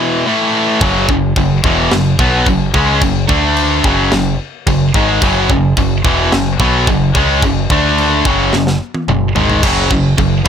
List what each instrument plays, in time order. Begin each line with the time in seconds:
Already playing: distorted electric guitar E2 B2 E3
0.26 distorted electric guitar A2 E3 A3
0.81 picked electric bass F#1, distorted electric guitar F#2 C#3 F#3, kick, china
1.09 picked electric bass F#1, distorted electric guitar F#2 C#3, kick
1.36 picked electric bass F#1, distorted electric guitar F#2 C#3, kick, china
1.64 picked electric bass E1, distorted electric guitar E2 B2 E3, kick
1.91 picked electric bass F#1, distorted electric guitar F#2 C#3, snare, china
2.19 picked electric bass B1, distorted electric guitar B2 F#3 B3, kick
2.46 picked electric bass F#1, distorted electric guitar F#2 C#3, kick, china
2.74 picked electric bass C#2, distorted electric guitar C#3 G#3 C#4, kick
3.01 picked electric bass F#1, distorted electric guitar F#2 C#3, kick, china
3.29 picked electric bass D2, distorted electric guitar D3 A3 D4, kick
3.57 china
3.84 picked electric bass F#1, distorted electric guitar F#2 C#3 F#3, kick
4.12 picked electric bass F#1, distorted electric guitar F#2 C#3, snare, china
4.67 picked electric bass F#1, distorted electric guitar F#2 C#3, kick, china
4.94 picked electric bass G#1, distorted electric guitar G#2 D#3 G#3, kick
5.22 picked electric bass F#1, distorted electric guitar F#2 C#3 F#3, kick, china
5.49 picked electric bass F#1, distorted electric guitar F#2 C#3, kick
5.77 picked electric bass F#1, distorted electric guitar F#2 C#3, kick, china
6.04 picked electric bass E1, distorted electric guitar E2 B2 E3, kick
6.32 picked electric bass F#1, distorted electric guitar F#2 C#3, snare, china
6.60 picked electric bass B1, distorted electric guitar B2 F#3 B3, kick
6.87 picked electric bass F#1, distorted electric guitar F#2 C#3, kick, china
7.15 picked electric bass C#2, distorted electric guitar C#3 G#3 C#4, kick
7.42 picked electric bass F#1, distorted electric guitar F#2 C#3, kick, china
7.70 picked electric bass D2, distorted electric guitar D3 A3 D4, kick
7.98 china
8.25 picked electric bass F#1, distorted electric guitar F#2 C#3 F#3, kick
8.53 picked electric bass F#1, distorted electric guitar F#2 C#3, snare
8.67 snare
8.94 high tom
9.08 picked electric bass F#1, distorted electric guitar F#2 C#3, mid tom
9.36 picked electric bass G#1, distorted electric guitar G#2 D#3 G#3, floor tom
9.50 floor tom
9.63 picked electric bass F#1, distorted electric guitar F#2 C#3 F#3, kick, crash, china
9.90 picked electric bass F#1, distorted electric guitar F#2 C#3, kick
10.18 picked electric bass F#1, distorted electric guitar F#2 C#3, kick, china